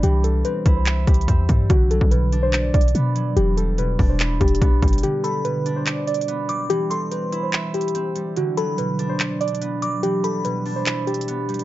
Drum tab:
HH |x-----------x-----------x-----------x-----------x-----------x---x---x---x-----------x-----------|x-----------x-----------x-----------x-----------x-----------x---x---x---x-----------x-----------|x-----------x-----------x-----------o-----------x-----------x---x---x---x-----------x--x--x--x--|x-----------x-----------x-----------x-----------x-----------x---x---x---x-----------x-----------|
CP |------------------------------------------------x-----------------------------------------------|------------------------------------------------x-----------------------------------------------|------------------------------------------------x-----------------------------------------------|------------------------------------------------x-----------------------------------------------|
BD |------------------------------------o-----------------------o-----------o-----------o-----------|o-----------------o-----------------------------------------o-----------------------------------|------------------------------------o-----------------------o-----------o-----------o-----------|------------------------------------------------------------------------------------------------|

HH |x-----------x-----------x-----------x-----------x-----------x---x---x---x-----------x-----------|x-----------x-----------x-----------x-----------x-----------x---x---x---x-----------x-----------|x-----------x-----------x-----------o-----------x-----------x---x---x---x-----------x--x--x-----|
CP |------------------------------------------------x-----------------------------------------------|------------------------------------------------x-----------------------------------------------|------------------------------------------------x-----------------------------------------------|
BD |------------------------------------------------------------------------------------------------|------------------------------------------------------------------------------------------------|------------------------------------------------------------------------------------------------|